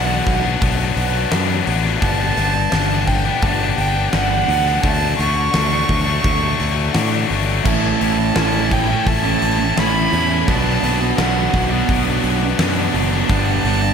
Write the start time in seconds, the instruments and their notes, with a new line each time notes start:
Already playing: fingered electric bass B1, distorted electric guitar B2 F#3, violin F#5
0.07 distorted electric guitar F#3 B3 D4
0.27 fingered electric bass B1, kick, open hi-hat
0.43 distorted electric guitar F#3 B3 D4
0.60 fingered electric bass B1, distorted electric guitar B2 F#3 B3 D4, kick, open hi-hat
0.77 distorted electric guitar F#3 B3 D4
0.96 fingered electric bass B1, open hi-hat
1.30 fingered electric bass F#2, distorted electric guitar B2 F#3 B3 D4, snare, open hi-hat
1.47 distorted electric guitar F#3 B3 D4
1.65 fingered electric bass A1, distorted electric guitar B2 F#3 B3 D4, open hi-hat
1.83 distorted electric guitar F#3 B3 D4, snare
2.00 fingered electric bass G1, distorted electric guitar G2 D3 G3 B3 D4, violin A5, kick, open hi-hat
2.36 fingered electric bass G1, distorted electric guitar D3 G3 B3 D4, snare, open hi-hat
2.54 muted distorted electric guitar stroke
2.71 fingered electric bass G1, distorted electric guitar G2 D3 G3 B3 D4, snare, open hi-hat
2.89 distorted electric guitar G3 B3 D4
3.07 violin G5, kick, open hi-hat
3.25 distorted electric guitar G3 B3 D4
3.42 fingered electric bass G1, distorted electric guitar D3 G3 B3, violin A5, kick, open hi-hat
3.46 distorted electric guitar D4
3.60 distorted electric guitar G3 B3 D4
3.78 fingered electric bass G1, violin G5, open hi-hat
4.13 fingered electric bass G1, distorted electric guitar G2 D3 G3 B3 D4, violin F#5, snare, open hi-hat
4.31 distorted electric guitar G3 B3 D4
4.47 fingered electric bass D2, distorted electric guitar D3 G3 B3 D4, open hi-hat
4.65 distorted electric guitar G3 B3 D4, snare
4.82 fingered electric bass D2, distorted electric guitar D3 F#3 A3 D4, violin A5, kick, open hi-hat
5.17 fingered electric bass D2, distorted electric guitar D3 F#3 A3 D4, violin C#6, snare, open hi-hat
5.36 muted distorted electric guitar stroke
5.52 fingered electric bass D2, distorted electric guitar D3 F#3 A3 D4, snare, open hi-hat
5.70 distorted electric guitar F#3 A3 D4
5.89 fingered electric bass D2, kick, open hi-hat
6.05 distorted electric guitar F#3 A3 D4
6.23 fingered electric bass D2, distorted electric guitar D3 F#3 A3 D4, kick, open hi-hat
6.40 distorted electric guitar F#3 A3 D4
6.60 fingered electric bass D2, open hi-hat
6.93 fingered electric bass A2, distorted electric guitar D3 F#3 A3 D4, snare, open hi-hat
7.11 distorted electric guitar F#3 A3 D4
7.28 fingered electric bass G1, distorted electric guitar D3 F#3 A3 D4, open hi-hat
7.46 distorted electric guitar F#3 A3 D4
7.63 fingered electric bass A1, distorted electric guitar A2 E3 A3 C#4 E4, violin A5, kick, crash
7.99 fingered electric bass A1, distorted electric guitar E3 A3 C#4 E4, open hi-hat
8.17 distorted electric guitar A3 C#4 E4, muted distorted electric guitar stroke
8.35 fingered electric bass A1, distorted electric guitar A2 E3 A3 C#4 E4, snare, open hi-hat
8.53 distorted electric guitar A3 C#4 E4
8.70 distorted electric guitar E3 A3 C#4 E4, violin G5, kick, open hi-hat
8.88 distorted electric guitar A3 C#4 E4, muted distorted electric guitar stroke
9.05 fingered electric bass A1, distorted electric guitar E3 A3 C#4 E4, violin A5, kick, open hi-hat
9.23 distorted electric guitar A3 C#4 E4
9.42 fingered electric bass A1, open hi-hat
9.59 muted distorted electric guitar stroke
9.76 fingered electric bass A1, distorted electric guitar A2 E3 A3 C#4 E4, violin B5, snare, open hi-hat
9.94 distorted electric guitar A3 C#4 E4
10.12 fingered electric bass E2, distorted electric guitar E3 A3 C#4 E4, open hi-hat
10.29 distorted electric guitar A3 C#4 E4
10.47 fingered electric bass B1, distorted electric guitar B2 F#3 B3 D4, violin A5, kick, open hi-hat
10.81 fingered electric bass B1, distorted electric guitar B2 F#3 B3 D4, snare, open hi-hat
11.00 distorted electric guitar F#3 B3 D4, muted distorted electric guitar stroke
11.17 fingered electric bass B1, distorted electric guitar B2 F#3 B3 D4, violin F#5, snare, open hi-hat
11.35 distorted electric guitar F#3 B3 D4
11.53 fingered electric bass B1, distorted electric guitar B2 F#3 B3 D4, kick, open hi-hat
11.71 distorted electric guitar F#3 B3 D4, muted distorted electric guitar stroke
11.88 fingered electric bass B1, distorted electric guitar B2 F#3 B3 D4, kick, open hi-hat
12.05 distorted electric guitar F#3 B3 D4
12.24 fingered electric bass B1, open hi-hat
12.41 muted distorted electric guitar stroke
12.58 fingered electric bass F#2, distorted electric guitar B2 F#3 B3 D4, snare, open hi-hat
12.76 distorted electric guitar F#3 B3 D4
12.94 fingered electric bass F#1, distorted electric guitar B2 F#3 B3 D4, open hi-hat
13.11 distorted electric guitar F#3 B3 D4, snare
13.28 fingered electric bass G1, distorted electric guitar G2 D3 G3 B3 D4, violin A5, kick, open hi-hat
13.64 fingered electric bass G1, distorted electric guitar D3 G3 B3 D4, open hi-hat
13.82 distorted electric guitar G3 B3 D4, muted distorted electric guitar stroke